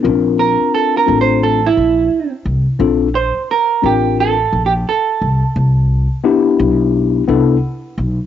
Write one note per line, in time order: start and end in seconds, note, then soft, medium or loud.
0.03 0.55 A#1 loud
0.03 1.02 C4 medium
0.03 0.12 C#4 medium
0.03 1.03 F4 medium
0.03 1.03 A#4 medium
0.09 1.06 D4 medium
0.39 0.71 A#4 medium
0.75 0.95 A4 loud
0.97 1.20 A#4 medium
1.06 1.68 A1 medium
1.06 1.59 C4 medium
1.06 1.60 D4 medium
1.06 1.60 F4 medium
1.06 1.60 A4 medium
1.21 1.42 C5 loud
1.43 1.66 A4 medium
1.66 2.31 E4 medium
1.77 2.07 A#1 medium
2.45 2.65 C2 medium
2.79 3.30 A#1 loud
2.79 3.07 C4 medium
2.79 3.07 D4 medium
2.79 3.07 F4 medium
2.79 3.08 A4 medium
3.15 3.47 C5 medium
3.51 3.86 A#4 loud
3.82 4.44 A1 medium
3.82 4.35 C4 medium
3.82 4.36 D4 medium
3.82 4.36 F4 medium
3.82 4.17 G4 medium
3.82 4.36 A#4 medium
4.20 4.62 A4 medium
4.53 4.83 A#1 medium
4.66 4.72 G4 medium
4.89 6.56 A4 medium
5.21 5.41 C2 medium
5.56 6.06 C2 loud
6.24 7.23 B3 medium
6.24 7.23 D4 medium
6.24 7.23 E4 medium
6.24 7.24 G4 loud
6.59 7.20 B1 loud
7.28 7.59 C2 medium
7.28 7.55 B3 loud
7.28 7.56 D4 medium
7.28 7.56 E4 medium
7.28 7.56 A4 loud
7.98 8.17 B1 loud